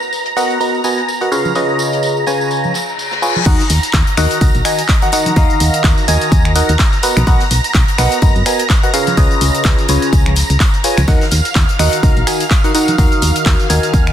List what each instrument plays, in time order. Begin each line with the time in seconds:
Already playing: analog synth pad A#5
0.02 tambourine
0.13 tambourine
0.26 closed hi-hat, tambourine
0.36 fm electric piano B3 F#4 A#4 B4 D#5 F#5, open hi-hat, tambourine
0.50 closed hi-hat, tambourine
0.60 fm electric piano B3 F#4 A#4 B4 D#5 A#5, tambourine
0.75 tambourine
0.84 fm electric piano B3 F#4 A#4 B4 D#5 G#5, tambourine
0.98 closed hi-hat, tambourine
1.08 tambourine
1.21 fm electric piano F#4 A#4 B4 D#5 F#5, closed hi-hat, tambourine
1.32 fm electric piano C#3 F4 G#4 B4 C#5 F5, tambourine
1.45 tambourine, high conga
1.55 fm electric piano C#3 F4 G#4 B4 C#5 D#5, tambourine
1.69 tambourine
1.79 tambourine
1.93 closed hi-hat, tambourine
2.03 tambourine
2.17 tambourine
2.27 fm electric piano C#3 F4 G#4 B4 C#5 G#5, tambourine
2.41 tambourine
2.51 tambourine, reverse cymbal
2.64 tambourine, high conga
2.74 snare, tambourine
2.89 tambourine
2.99 tambourine
3.11 snare, tambourine
3.22 fm electric piano F4 G#4 B4 C#5 G#5, snare, tambourine
3.36 tambourine, high conga
3.46 fm bass D#2, fm electric piano D#3 D#4 F#4 A#4 D#5 F#5, analog synth pad A#5, kick, closed hi-hat, crash, tambourine
3.60 snare, closed hi-hat, tambourine
3.70 fm bass D#2, snare, open hi-hat, tambourine
3.83 closed hi-hat, tambourine
3.93 fm bass D#2, kick, snare, clap, closed hi-hat, tambourine
4.07 closed hi-hat, tambourine
4.17 fm bass D#2, fm electric piano D#3 D#4 F#4 A#4 D#5 F#5, finger snap, open hi-hat, tambourine
4.31 closed hi-hat, tambourine
4.41 fm bass C#2, fm electric piano D#3 D#4 F#4 A#4 D#5 A#5, kick, closed hi-hat, tambourine
4.55 fm bass A#1, closed hi-hat, tambourine
4.65 fm electric piano D#3 D#4 F#4 A#4 D#5 G#5, finger snap, open hi-hat, tambourine
4.78 closed hi-hat, tambourine
4.88 kick, snare, clap, closed hi-hat, tambourine
5.02 fm electric piano D#3 D#4 F#4 A#4 D#5 F#5, closed hi-hat, tambourine
5.12 fm electric piano D#3 D#4 F#4 A#4 D#5 F#5, open hi-hat, tambourine
5.26 closed hi-hat, tambourine, high conga
5.36 fm bass D#2, fm electric piano D#3 D#4 F#4 A#4 D#5 F5, kick, closed hi-hat, tambourine
5.50 closed hi-hat, tambourine
5.60 fm bass D#2, open hi-hat, tambourine
5.74 closed hi-hat, tambourine
5.84 fm bass D#2, kick, snare, clap, closed hi-hat, tambourine
5.98 closed hi-hat, tambourine
6.08 fm bass D#2, fm electric piano D#3 D#4 F#4 A#4 D#5 G#5, open hi-hat, tambourine
6.21 closed hi-hat, tambourine
6.32 fm bass D#2, kick, closed hi-hat, tambourine
6.45 finger snap, closed hi-hat, tambourine
6.55 fm electric piano D#3 D#4 F#4 A#4 D#5 F#5, snare, open hi-hat, tambourine
6.69 fm bass D#2, closed hi-hat, tambourine
6.78 kick, snare, clap, closed hi-hat, tambourine
6.93 closed hi-hat, tambourine
7.03 fm electric piano B3 F#4 A#4 B4 D#5 F#5, open hi-hat, tambourine
7.17 fm bass B1, finger snap, closed hi-hat, tambourine, high conga
7.27 fm bass B1, fm electric piano B3 F#4 A#4 B4 D#5 F#5, kick, closed hi-hat, tambourine
7.40 snare, closed hi-hat, tambourine
7.51 fm bass B1, snare, open hi-hat, tambourine
7.64 closed hi-hat, tambourine
7.74 fm bass B1, kick, snare, clap, closed hi-hat, tambourine
7.88 closed hi-hat, tambourine
7.98 fm bass B1, fm electric piano B3 F#4 A#4 B4 D#5 F#5, finger snap, open hi-hat, tambourine
8.11 closed hi-hat, tambourine
8.22 fm bass F#1, fm electric piano B3 F#4 A#4 B4 D#5 A#5, kick, closed hi-hat, tambourine
8.36 fm bass F#2, closed hi-hat, tambourine
8.46 fm electric piano B3 F#4 A#4 B4 D#5 G#5, finger snap, open hi-hat, tambourine
8.59 closed hi-hat, tambourine
8.70 kick, snare, clap, closed hi-hat, tambourine
8.83 fm electric piano F#4 A#4 B4 D#5 F#5, closed hi-hat, tambourine
8.94 fm electric piano C#3 F4 G#4 B4 C#5 F5, open hi-hat, tambourine
9.07 closed hi-hat, tambourine, high conga
9.17 fm bass C#2, fm electric piano C#3 F4 G#4 B4 C#5 D#5, kick, closed hi-hat, tambourine
9.31 closed hi-hat, tambourine
9.41 fm bass C#2, open hi-hat, tambourine
9.55 closed hi-hat, tambourine
9.64 fm bass C#2, kick, snare, clap, closed hi-hat, tambourine
9.66 tambourine
9.78 closed hi-hat, tambourine
9.88 fm bass C#2, fm electric piano C#3 F4 G#4 B4 C#5 G#5, open hi-hat, tambourine
10.02 closed hi-hat, tambourine
10.13 fm bass C#2, kick, closed hi-hat, tambourine
10.26 finger snap, closed hi-hat, tambourine, high conga
10.36 snare, open hi-hat, tambourine
10.50 fm bass C#2, closed hi-hat, tambourine
10.60 kick, snare, clap, closed hi-hat, tambourine
10.74 closed hi-hat, tambourine
10.84 fm electric piano F4 G#4 B4 C#5 G#5, open hi-hat, tambourine
10.97 fm bass C#2, finger snap, closed hi-hat, tambourine, high conga
11.08 fm bass D#2, fm electric piano D#3 D#4 F#4 A#4 D#5 F#5, analog synth pad F5, kick, closed hi-hat, tambourine
11.21 snare, closed hi-hat, tambourine
11.31 fm bass D#2, snare, open hi-hat, tambourine
11.45 closed hi-hat, tambourine
11.55 fm bass D#2, kick, snare, clap, closed hi-hat, tambourine
11.69 closed hi-hat, tambourine
11.79 fm bass D#2, fm electric piano D#3 D#4 F#4 A#4 D#5 F#5, finger snap, open hi-hat, tambourine
11.92 closed hi-hat, tambourine
12.03 fm bass C#2, fm electric piano D#3 D#4 F#4 A#4 D#5 A#5, kick, closed hi-hat, tambourine
12.17 fm bass A#1, closed hi-hat, tambourine
12.27 fm electric piano D#3 D#4 F#4 A#4 D#5 G#5, finger snap, open hi-hat, tambourine
12.40 closed hi-hat, tambourine
12.51 kick, snare, clap, closed hi-hat, tambourine
12.64 fm electric piano D#3 D#4 F#4 A#4 D#5 F#5, closed hi-hat, tambourine
12.74 fm electric piano D#3 D#4 F#4 A#4 D#5 F#5, open hi-hat, tambourine
12.88 closed hi-hat, tambourine, high conga
12.98 fm bass D#2, fm electric piano D#3 D#4 F#4 A#4 D#5 F5, kick, closed hi-hat, tambourine
13.12 closed hi-hat, tambourine
13.22 fm bass D#2, open hi-hat, tambourine
13.36 closed hi-hat, tambourine
13.46 fm bass D#2, kick, snare, clap, closed hi-hat, tambourine
13.60 closed hi-hat, tambourine
13.70 fm bass D#2, fm electric piano D#3 D#4 F#4 A#4 D#5 G#5, open hi-hat, tambourine
13.83 closed hi-hat, tambourine
13.93 fm bass D#2, kick, closed hi-hat, tambourine
14.07 finger snap, closed hi-hat, tambourine